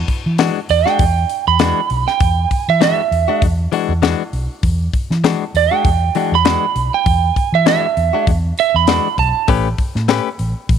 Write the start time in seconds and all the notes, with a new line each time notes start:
0.08 kick, open hi-hat
0.26 E3
0.38 E3 G#3 D4 F#4, snare, open hi-hat
0.69 E2 D5, open hi-hat
0.86 G#3 D4 F#4 G5, snare
0.99 E2, kick, open hi-hat
1.30 open hi-hat
1.47 E2 B5
1.59 E3 G#3 D4 F#4, snare, open hi-hat
1.90 B1, open hi-hat
2.07 G5, snare
2.20 E2, kick, open hi-hat
2.51 kick, open hi-hat
2.68 E3 E5
2.81 E3 G#3 D4 F#4 E5, snare, open hi-hat
3.11 E2, open hi-hat
3.28 G#3 D4 F#4
3.42 E2, kick, open hi-hat
3.72 E3 G#3 D4 F#4, open hi-hat
3.89 E2
4.02 E3 G#3 D4 F#4, snare, open hi-hat
4.33 B1, open hi-hat
4.63 E2, kick, open hi-hat
4.93 kick, open hi-hat
5.10 E3, snare
5.24 E3 G#3 D4 F#4, snare, open hi-hat
5.54 E2 D5, open hi-hat
5.71 G#3 D4 F#4 G5
5.85 E2, kick, open hi-hat
6.15 E3 G#3 D4 F#4, open hi-hat
6.32 E2 B5
6.45 E3 G#3 D4 F#4, snare, open hi-hat
6.76 B1, open hi-hat
6.94 G5
7.06 E2, kick, open hi-hat
7.36 kick, open hi-hat
7.52 E3 E5
7.66 E3 G#3 D4 F#4 E5, snare, open hi-hat
7.97 E2, open hi-hat
8.13 G#3 D4 F#4
8.27 E2, kick, open hi-hat
8.58 E5, open hi-hat
8.74 E2 B5
8.87 E3 G#3 D4 F#4, snare, open hi-hat
9.18 B1 A5, kick, open hi-hat
9.48 A1 A3 C#4 G4 B4, kick, open hi-hat
9.78 kick, open hi-hat
9.95 A2, snare
10.08 A3 C#4 G4 B4, snare, open hi-hat
10.39 A1, open hi-hat
10.69 A1, kick, open hi-hat